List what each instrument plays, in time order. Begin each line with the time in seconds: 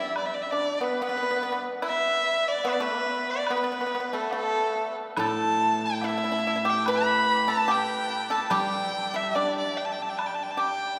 Already playing: guzheng G3, pipa E4, erhu E5
0.16 erhu D5, high woodblock
0.26 erhu E5
0.34 erhu D5
0.42 erhu E5
0.51 pipa D4, erhu D5
0.77 pipa B3, erhu D5
0.83 erhu B4
1.00 pipa B3, erhu B4, low woodblock
1.09 pipa B3
1.17 pipa B3
1.23 pipa B3
1.31 pipa B3
1.36 pipa B3
1.43 pipa B3
1.52 pipa B3
1.82 pipa E4, erhu E5, high woodblock
2.48 erhu D5
2.63 pipa B3, low woodblock
2.69 erhu B4 D5
2.80 pipa A3, erhu B4
2.99 pipa B3
3.31 erhu D5
3.47 pipa B3, high woodblock
3.51 erhu B4
3.57 pipa B3
3.64 pipa B3
3.72 pipa B3
3.81 pipa B3
3.86 pipa B3
3.95 pipa B3
4.00 pipa B3
4.13 pipa A3, erhu A4
4.31 pipa A3, low woodblock
4.36 erhu A4
5.17 guzheng A2, pipa A4, high woodblock
5.21 erhu A5
5.86 erhu G5
6.01 pipa E4, low woodblock
6.06 pipa E4, erhu E5
6.18 pipa E4
6.24 pipa E4
6.32 pipa E4
6.38 pipa E4
6.47 pipa E4
6.56 pipa E4
6.65 pipa G4
6.70 erhu G5
6.86 pipa B4, high woodblock
6.91 erhu B5
7.48 pipa A4, erhu A5
7.68 pipa G4, erhu G5, low woodblock
8.30 pipa A4, erhu A5
8.43 erhu A5
8.50 guzheng G3, pipa G4, erhu G5, high woodblock
9.14 pipa E4, erhu E5
9.33 pipa D4, erhu D5, low woodblock
9.58 erhu D5
9.77 erhu G5
9.85 erhu A5
9.92 erhu G5
10.02 erhu A5
10.09 erhu G5
10.17 erhu A5, high woodblock
10.26 erhu G5
10.35 erhu A5
10.43 erhu G5
10.51 erhu A5
10.57 pipa G4, erhu G5